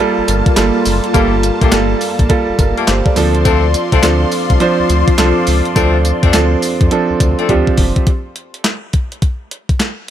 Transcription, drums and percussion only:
0.28 closed hi-hat medium
0.28 tambourine medium
0.46 kick loud
0.46 closed hi-hat soft
0.57 snare loud
0.57 clap medium
0.57 closed hi-hat medium
0.57 tambourine medium
0.85 open hi-hat medium
0.85 tambourine medium
1.04 closed hi-hat medium
1.14 kick loud
1.14 closed hi-hat medium
1.14 tambourine medium
1.43 closed hi-hat medium
1.43 tambourine medium
1.62 kick medium
1.62 closed hi-hat medium
1.72 snare loud
1.72 clap loud
1.72 closed hi-hat medium
1.72 tambourine loud
2.01 open hi-hat medium
2.01 tambourine medium
2.19 kick loud
2.19 closed hi-hat medium
2.30 kick loud
2.30 closed hi-hat medium
2.59 kick loud
2.59 closed hi-hat medium
2.59 tambourine medium
2.78 closed hi-hat soft
2.88 snare loud
2.88 clap medium
2.88 closed hi-hat medium
2.88 tambourine medium
3.06 kick medium
3.16 open hi-hat medium
3.16 tambourine medium
3.35 closed hi-hat medium
3.45 kick loud
3.45 closed hi-hat medium
3.45 tambourine medium
3.74 closed hi-hat medium
3.74 tambourine medium
3.92 kick medium
3.92 closed hi-hat medium
4.03 snare loud
4.03 clap medium
4.03 closed hi-hat medium
4.03 tambourine loud
4.32 open hi-hat medium
4.32 tambourine medium
4.50 kick medium
4.50 closed hi-hat medium
4.60 closed hi-hat medium
4.89 closed hi-hat medium
4.89 tambourine medium
5.08 kick loud
5.08 closed hi-hat soft
5.18 snare loud
5.18 clap medium
5.18 closed hi-hat medium
5.18 tambourine medium
5.47 open hi-hat medium
5.47 tambourine medium
5.65 closed hi-hat medium
5.76 kick loud
5.76 closed hi-hat medium
5.76 tambourine medium
6.05 closed hi-hat medium
6.05 tambourine medium
6.23 kick medium
6.23 closed hi-hat medium
6.33 snare loud
6.33 clap loud
6.33 closed hi-hat medium
6.33 tambourine loud
6.62 open hi-hat medium
6.62 tambourine medium
6.81 kick medium
6.81 closed hi-hat medium
6.91 closed hi-hat medium
7.20 kick loud
7.20 closed hi-hat medium
7.20 tambourine medium
7.39 closed hi-hat soft
7.49 kick medium
7.49 closed hi-hat medium
7.67 kick medium
7.77 kick loud
7.77 open hi-hat medium
7.96 kick medium
7.96 closed hi-hat soft
8.07 kick loud
8.07 closed hi-hat medium
8.36 closed hi-hat medium
8.54 closed hi-hat medium
8.64 snare loud
8.64 clap medium
8.64 closed hi-hat medium
8.93 kick medium
8.93 closed hi-hat medium
9.12 closed hi-hat medium
9.22 kick medium
9.22 closed hi-hat medium
9.51 closed hi-hat medium
9.69 kick medium
9.69 closed hi-hat soft
9.80 snare loud
9.80 clap medium
9.80 closed hi-hat medium

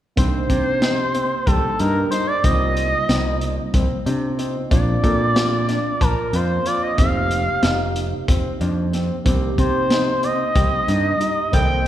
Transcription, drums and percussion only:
0.17 kick medium
0.17 closed hi-hat medium
0.50 kick medium
0.50 closed hi-hat medium
0.82 snare medium
0.82 closed hi-hat medium
1.15 closed hi-hat medium
1.47 kick medium
1.47 closed hi-hat medium
1.79 closed hi-hat medium
2.12 closed hi-hat medium
2.44 kick loud
2.44 closed hi-hat medium
2.77 closed hi-hat medium
3.09 snare medium
3.09 closed hi-hat medium
3.41 closed hi-hat medium
3.74 kick medium
3.74 closed hi-hat medium
4.07 closed hi-hat medium
4.39 closed hi-hat medium
4.71 kick loud
4.71 closed hi-hat medium
5.04 kick medium
5.04 closed hi-hat soft
5.36 snare medium
5.36 closed hi-hat medium
5.69 snare soft
5.69 closed hi-hat medium
6.01 kick medium
6.01 closed hi-hat medium
6.33 closed hi-hat medium
6.66 closed hi-hat medium
6.98 kick loud
6.98 closed hi-hat medium
7.31 closed hi-hat medium
7.63 snare loud
7.63 closed hi-hat medium
7.96 closed hi-hat medium
8.28 kick medium
8.28 closed hi-hat medium
8.61 closed hi-hat medium
8.93 snare soft
8.93 closed hi-hat medium
9.26 kick medium
9.26 closed hi-hat medium
9.58 kick medium
9.58 closed hi-hat soft
9.90 snare loud
9.90 closed hi-hat medium
10.23 closed hi-hat medium
10.55 kick medium
10.55 closed hi-hat medium
10.88 closed hi-hat medium
11.21 closed hi-hat medium
11.53 kick medium
11.53 closed hi-hat medium

